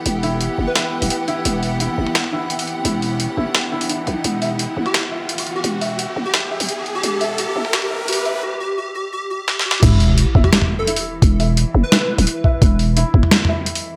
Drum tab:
CC |------------------------------------------------------------------------------------------------|------------------------------------------------------------------------------------------------|------------------------------------------------------------------------------------------------|------------------------------------------------------------------------------------------------|
HH |x-----------o-----------x-----------------------x-----------------o-----x-----------x-----------|x-----------o-----------x-----------------------x-----------------------x-----o-----x-----------|x-----------o-----------x-----------------------x-----------------o-----x-----------x-----------|x-----------o-----------x-----------------------x-----------------------x-----o-----x-----------|
SD |------------------------------------------------o-----------------------------------------------|------------------------------------------------o-----------------------------------------------|------------------------------------------------o-----------------------------------------------|------------------------------------------------o-----------------------------------------------|
T2 |------------------------------------------------------------------------------------------------|------------------------------------------o-----------o-----------------------------------------|------------------------------------------------------------------------------------------------|------------------------------------------o-----------o-----------------------------------------|
BD |------------------------------------------------------------------------------------------------|------------------------------------------------------------------------------------------------|------------------------------------------------------------------------------------------------|------------------------------------------------------------------------------------------------|

CC |------------------------------------------------------------------------------------------------|------------------------------------------------------------------------------------------------|------------------------------------------------------------------------------------------------|x-----------------------------------------------------------------------------------------------|
HH |x-----------o-----------x-----------------------x-----------------o-----x-----------x-----------|x-----------o-----------x-----------------------x-----------------------x--o--------x-----------|------------------------------------------------------------------------------------------------|x-----------o-----------x-----------------------x-----------------------x-----o-----------------|
SD |------------------------------------------------o-----------------------------------------------|------------------------------------------------o-----------------------------------------------|------------------------------------------------------------------------o-------o-------o-------|------------------------------------------------o-----------------------------------------------|
T2 |------------------------------------------------------------------------------------------------|------------------------------------------o-----------o-----------------------------------------|------------------------------------------------------------------------------------------------|------------------------------------------o-----------o-----------------------------------------|
BD |------------------------------------------------------------------------------------------------|------------------------------------------------------------------------------------------------|------------------------------------------------------------------------------------------------|o-----------------------------------o-----------------------------------------------------------|

CC |------------------------------------------------------------------------------------------------|------------------------------------------------------------------------------------------------|
HH |x-----------o-----------x-----------------------x-----------------o-----x-----------------------|x-----------o-----------x-----------------------x-----------------------x-----o-----------------|
SD |------------------------------------------------o-----------------------------------------------|------------------------------------------------o-----------------------------------------------|
T2 |------------------------------------------------------------------------------------------------|------------------------------------------o--------------o--------------------------------------|
BD |o-----------------------------------------------------------------------------------o-----------|o-----------------------------------o-----------------------------------------------------------|